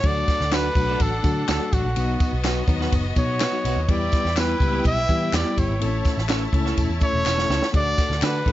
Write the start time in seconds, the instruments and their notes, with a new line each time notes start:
0.03 picked electric bass D2, tine electric piano F#3 A3 D4 F#4, string section D4 A4 F#5, trumpet D5, kick, ride
0.28 kick, snare, ride, tambourine
0.40 picked electric bass D2, snare
0.51 tine electric piano F#3 A3 D4 F#4, clean electric guitar D4 F#4 A4 D5, trumpet B4, snare, clap, ride, tambourine
0.75 picked electric bass B1, tine electric piano F#3 A3 D4 F#4, kick, ride, tambourine
0.89 clean electric guitar D4 F#4 A4 D5
1.00 picked electric bass A1, trumpet A4, kick, ride, tambourine
1.23 picked electric bass D3, tine electric piano F#3 A3 D4 F#4, kick, ride, tambourine
1.48 picked electric bass D2, clean electric guitar D4 F#4 A4 D5, trumpet A4, snare, clap, ride, tambourine
1.59 tine electric piano F#3 A3 D4 F#4
1.73 picked electric bass A1, trumpet F#4, kick, ride, tambourine
1.84 picked electric bass A#1
1.96 picked electric bass B1, tine electric piano F#3 B3 D#4 F#4, string section B3 F#4 D#5, ride, tambourine
2.20 kick, ride, tambourine
2.33 picked electric bass B1
2.44 tine electric piano F#3 B3 D#4 F#4, clean electric guitar B3 D#4 F#4 B4, snare, clap, ride, tambourine
2.67 picked electric bass D#2, tine electric piano F#3 B3 D#4 F#4, kick, ride, tambourine
2.80 clean electric guitar B3 D#4 F#4 B4, snare
2.92 picked electric bass F#1, kick, ride, tambourine
3.16 picked electric bass B2, tine electric piano F#3 B3 D#4 F#4, trumpet C#5, kick, ride, tambourine
3.40 clean electric guitar B3 D#4 F#4 B4, snare, clap, ride, tambourine
3.52 tine electric piano F#3 B3 D#4 F#4
3.65 picked electric bass B1, clean electric guitar B3 D#4 F#4 B4, ride, tambourine
3.76 picked electric bass D#2
3.83 trumpet C#5
3.88 picked electric bass E2, tine electric piano G3 B3 E4 G4, string section E4 B4 G5, trumpet D5, kick, ride
4.12 kick, snare, ride, tambourine
4.25 picked electric bass E2, snare
4.37 tine electric piano G3 B3 E4 G4, clean electric guitar B3 E4 G4 B4, trumpet B4, snare, clap, ride, tambourine
4.60 picked electric bass C#2, tine electric piano G3 B3 E4 G4, kick, ride, tambourine
4.72 clean electric guitar B3 E4 G4 B4
4.84 picked electric bass B1, trumpet E5, kick, ride, tambourine
5.08 picked electric bass E3, tine electric piano G3 B3 E4 G4, kick, ride, tambourine
5.33 picked electric bass E2, clean electric guitar B3 E4 G4 B4, trumpet D5, snare, clap, ride, tambourine
5.44 tine electric piano G3 B3 E4 G4
5.57 picked electric bass G1, trumpet C#5, kick, ride, tambourine
5.70 picked electric bass G#1
5.80 picked electric bass A1, tine electric piano A3 C4 E4 A4, string section E4 C#5 A5, ride
5.87 tine electric piano C#4
6.05 kick, snare, ride, tambourine
6.18 picked electric bass A1, snare
6.29 tine electric piano A3 C#4 E4 A4, clean electric guitar C#4 E4 A4 C#5, snare, clap, ride, tambourine
6.53 picked electric bass C#2, tine electric piano A3 C#4 E4 A4, kick, ride
6.65 clean electric guitar C#4 E4 A4 C#5, snare
6.77 picked electric bass E1, kick, ride, tambourine
6.89 picked electric bass E2
7.00 tine electric piano A3 C#4 E4 A4, trumpet C#5, kick, ride, tambourine
7.13 picked electric bass E1
7.25 picked electric bass E1, clean electric guitar C#4 E4 A4 C#5, snare, clap, tambourine
7.37 tine electric piano A3 C#4 E4 A4, snare
7.49 picked electric bass C#2, clean electric guitar C#4 E4 A4 C#5, snare, tambourine
7.62 snare
7.73 picked electric bass D2, tine electric piano A3 D4 F#4 G#4, string section D4 A4 F#5, trumpet D5, kick, ride, tambourine
7.80 tine electric piano A4
7.98 kick, snare, ride, tambourine
8.10 picked electric bass D2, snare
8.22 picked electric bass D3, tine electric piano A3 D4 F#4 B4, clean electric guitar D4 F#4 A4 D5, trumpet B4, snare, clap, ride, tambourine
8.46 picked electric bass A1, tine electric piano A3 D4 E4 A4, kick, ride